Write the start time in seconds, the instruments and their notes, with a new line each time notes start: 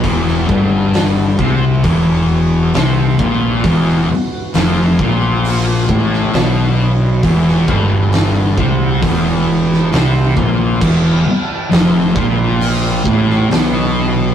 Already playing: synth drone E3 F#4 B4
0.04 fingered electric bass E1, distorted electric guitar E2, kick, open hi-hat
0.28 snare
0.49 fingered electric bass G1, distorted electric guitar G2, kick
0.94 snare, open hi-hat
1.39 fingered electric bass C2, distorted electric guitar C3, kick
1.83 fingered electric bass E1, distorted electric guitar E2, kick, open hi-hat
2.74 fingered electric bass C2, distorted electric guitar C3, snare, open hi-hat
3.19 fingered electric bass A#1, distorted electric guitar A#2, kick
3.64 fingered electric bass E1, distorted electric guitar E2, kick, open hi-hat
3.89 snare
4.10 muted fingered electric bass stroke, muted distorted electric guitar stroke
4.54 fingered electric bass F1, distorted electric guitar F2, snare, open hi-hat
4.99 fingered electric bass A#1, distorted electric guitar A#2, kick
5.45 open hi-hat
5.89 fingered electric bass A1, distorted electric guitar A2, kick
6.13 snare
6.33 fingered electric bass B1, distorted electric guitar B2, snare, open hi-hat
7.23 fingered electric bass E1, distorted electric guitar E2, kick, open hi-hat
7.48 snare
7.68 fingered electric bass G1, distorted electric guitar G2, kick
8.12 snare, open hi-hat
8.57 fingered electric bass C2, distorted electric guitar C3, kick
9.02 fingered electric bass E1, distorted electric guitar E2, kick, open hi-hat
9.72 snare
9.91 fingered electric bass C2, distorted electric guitar C3, snare, open hi-hat
10.36 fingered electric bass A#1, distorted electric guitar A#2, kick
10.81 fingered electric bass E1, distorted electric guitar E2, synth drone G4, kick, crash
11.26 muted distorted electric guitar stroke, muted fingered electric bass stroke
11.70 fingered electric bass F1, distorted electric guitar F2, snare, open hi-hat
12.14 fingered electric bass A#1, distorted electric guitar A#2, kick
12.61 open hi-hat
13.04 fingered electric bass A1, distorted electric guitar A2, kick
13.30 snare
13.50 fingered electric bass B1, distorted electric guitar B2, snare, open hi-hat